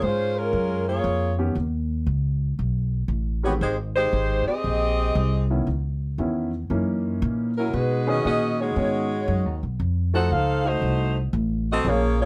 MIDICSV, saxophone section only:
0, 0, Header, 1, 2, 480
1, 0, Start_track
1, 0, Tempo, 514580
1, 1452, Time_signature, 4, 2, 24, 8
1, 11429, End_track
2, 0, Start_track
2, 0, Title_t, "Saxophone section"
2, 0, Program_c, 0, 65
2, 31, Note_on_c, 0, 72, 85
2, 38, Note_on_c, 0, 65, 75
2, 39, Note_on_c, 0, 61, 69
2, 40, Note_on_c, 0, 56, 74
2, 332, Note_off_c, 0, 65, 0
2, 335, Note_off_c, 0, 61, 0
2, 337, Note_off_c, 0, 56, 0
2, 341, Note_off_c, 0, 72, 0
2, 343, Note_on_c, 0, 65, 66
2, 345, Note_on_c, 0, 70, 84
2, 346, Note_on_c, 0, 61, 70
2, 349, Note_on_c, 0, 56, 70
2, 813, Note_off_c, 0, 65, 0
2, 818, Note_off_c, 0, 70, 0
2, 819, Note_off_c, 0, 61, 0
2, 819, Note_on_c, 0, 68, 63
2, 820, Note_off_c, 0, 56, 0
2, 822, Note_on_c, 0, 58, 66
2, 822, Note_on_c, 0, 73, 73
2, 824, Note_on_c, 0, 65, 63
2, 1262, Note_off_c, 0, 68, 0
2, 1263, Note_off_c, 0, 58, 0
2, 1264, Note_off_c, 0, 65, 0
2, 1264, Note_off_c, 0, 73, 0
2, 3219, Note_on_c, 0, 73, 69
2, 3223, Note_on_c, 0, 59, 67
2, 3224, Note_on_c, 0, 67, 67
2, 3226, Note_on_c, 0, 66, 64
2, 3290, Note_off_c, 0, 73, 0
2, 3293, Note_off_c, 0, 59, 0
2, 3293, Note_off_c, 0, 67, 0
2, 3295, Note_off_c, 0, 66, 0
2, 3370, Note_on_c, 0, 56, 64
2, 3374, Note_on_c, 0, 67, 64
2, 3375, Note_on_c, 0, 72, 71
2, 3378, Note_on_c, 0, 63, 70
2, 3514, Note_off_c, 0, 56, 0
2, 3517, Note_off_c, 0, 67, 0
2, 3518, Note_off_c, 0, 72, 0
2, 3520, Note_off_c, 0, 63, 0
2, 3694, Note_on_c, 0, 56, 71
2, 3694, Note_on_c, 0, 72, 95
2, 3700, Note_on_c, 0, 67, 76
2, 3702, Note_on_c, 0, 63, 81
2, 4139, Note_off_c, 0, 56, 0
2, 4139, Note_off_c, 0, 72, 0
2, 4142, Note_off_c, 0, 67, 0
2, 4143, Note_off_c, 0, 63, 0
2, 4175, Note_on_c, 0, 68, 90
2, 4177, Note_on_c, 0, 75, 98
2, 4179, Note_on_c, 0, 60, 78
2, 4180, Note_on_c, 0, 67, 83
2, 5096, Note_off_c, 0, 68, 0
2, 5097, Note_off_c, 0, 60, 0
2, 5097, Note_off_c, 0, 75, 0
2, 5098, Note_off_c, 0, 67, 0
2, 7066, Note_on_c, 0, 70, 74
2, 7068, Note_on_c, 0, 54, 67
2, 7068, Note_on_c, 0, 61, 66
2, 7069, Note_on_c, 0, 64, 64
2, 7209, Note_off_c, 0, 70, 0
2, 7210, Note_off_c, 0, 54, 0
2, 7210, Note_off_c, 0, 61, 0
2, 7211, Note_off_c, 0, 64, 0
2, 7219, Note_on_c, 0, 56, 69
2, 7219, Note_on_c, 0, 66, 74
2, 7225, Note_on_c, 0, 71, 81
2, 7230, Note_on_c, 0, 63, 74
2, 7529, Note_off_c, 0, 66, 0
2, 7534, Note_off_c, 0, 56, 0
2, 7538, Note_off_c, 0, 71, 0
2, 7538, Note_on_c, 0, 61, 76
2, 7539, Note_on_c, 0, 68, 78
2, 7540, Note_off_c, 0, 63, 0
2, 7541, Note_on_c, 0, 66, 82
2, 7544, Note_on_c, 0, 75, 86
2, 7687, Note_off_c, 0, 68, 0
2, 7693, Note_off_c, 0, 61, 0
2, 7693, Note_off_c, 0, 66, 0
2, 7694, Note_off_c, 0, 75, 0
2, 7698, Note_on_c, 0, 68, 74
2, 7704, Note_on_c, 0, 61, 78
2, 7704, Note_on_c, 0, 66, 79
2, 7705, Note_on_c, 0, 75, 98
2, 7992, Note_off_c, 0, 68, 0
2, 7995, Note_off_c, 0, 61, 0
2, 7995, Note_off_c, 0, 66, 0
2, 7995, Note_off_c, 0, 75, 0
2, 8031, Note_on_c, 0, 63, 69
2, 8031, Note_on_c, 0, 73, 86
2, 8033, Note_on_c, 0, 56, 77
2, 8033, Note_on_c, 0, 66, 68
2, 8981, Note_off_c, 0, 63, 0
2, 8981, Note_off_c, 0, 73, 0
2, 8982, Note_off_c, 0, 56, 0
2, 8982, Note_off_c, 0, 66, 0
2, 9470, Note_on_c, 0, 69, 81
2, 9471, Note_on_c, 0, 78, 94
2, 9476, Note_on_c, 0, 72, 76
2, 9479, Note_on_c, 0, 63, 73
2, 9611, Note_off_c, 0, 69, 0
2, 9611, Note_off_c, 0, 78, 0
2, 9614, Note_off_c, 0, 72, 0
2, 9616, Note_off_c, 0, 63, 0
2, 9631, Note_on_c, 0, 77, 95
2, 9635, Note_on_c, 0, 69, 88
2, 9636, Note_on_c, 0, 63, 81
2, 9638, Note_on_c, 0, 72, 80
2, 9932, Note_off_c, 0, 63, 0
2, 9941, Note_off_c, 0, 77, 0
2, 9942, Note_off_c, 0, 72, 0
2, 9943, Note_off_c, 0, 69, 0
2, 9943, Note_on_c, 0, 63, 70
2, 9948, Note_on_c, 0, 66, 68
2, 9952, Note_on_c, 0, 57, 70
2, 9953, Note_on_c, 0, 72, 82
2, 10417, Note_off_c, 0, 63, 0
2, 10420, Note_off_c, 0, 66, 0
2, 10422, Note_off_c, 0, 57, 0
2, 10422, Note_off_c, 0, 72, 0
2, 10933, Note_on_c, 0, 69, 83
2, 10934, Note_on_c, 0, 66, 81
2, 10934, Note_on_c, 0, 75, 90
2, 10936, Note_on_c, 0, 60, 88
2, 11063, Note_off_c, 0, 69, 0
2, 11064, Note_off_c, 0, 66, 0
2, 11064, Note_off_c, 0, 75, 0
2, 11065, Note_off_c, 0, 60, 0
2, 11084, Note_on_c, 0, 68, 87
2, 11085, Note_on_c, 0, 65, 73
2, 11087, Note_on_c, 0, 58, 83
2, 11089, Note_on_c, 0, 73, 100
2, 11381, Note_off_c, 0, 58, 0
2, 11383, Note_off_c, 0, 65, 0
2, 11384, Note_off_c, 0, 73, 0
2, 11387, Note_off_c, 0, 68, 0
2, 11392, Note_on_c, 0, 58, 73
2, 11394, Note_on_c, 0, 65, 77
2, 11395, Note_on_c, 0, 73, 93
2, 11429, Note_off_c, 0, 58, 0
2, 11429, Note_off_c, 0, 65, 0
2, 11429, Note_off_c, 0, 73, 0
2, 11429, End_track
0, 0, End_of_file